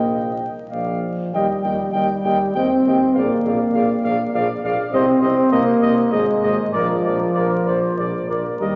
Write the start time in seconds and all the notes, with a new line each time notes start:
Already playing: A#1 A#3 D#5 G5
0.71 A#1 F3 D5 F5
1.33 D#2 G3 G4 D#5 G5
1.62 D#2 G4 D#5 G5
1.92 D#2 G3 G4 D#5 G5
2.24 D#2 G4 D#5 G5
2.54 D#2 C4 G4 D#5 G5
2.85 D#2 G4 D#5 G5
3.14 A#1 A#3 G#4 F5
3.18 D5
3.45 A#1 G#4 D5 F5
3.74 A#1 G#4 D5 F5
4.04 A#1 G#4 D5 F5
4.34 A#1 G#4 D5 F5
4.64 A#1 G#4 D5 F5
4.92 C2 C4 G4 C5 D#5
5.21 C2 C4 G4 C5 D#5
5.51 C2 A#3 G4 C5 D#5
5.82 C2 G4 C5 D#5
6.11 G#1 G#3 G#4 C5 D#5
6.43 G#1 G#4 C5 D#5
6.72 A#1 F3 A#4 D5
7.04 A#1 A#4 D5
7.34 A#1 A#4 D5
7.65 A#1 A#4 C5 D5
7.97 A#1 A#4 D5
8.29 A#1 A#4 D5
8.60 D#2 G3 G4 A#4 D#5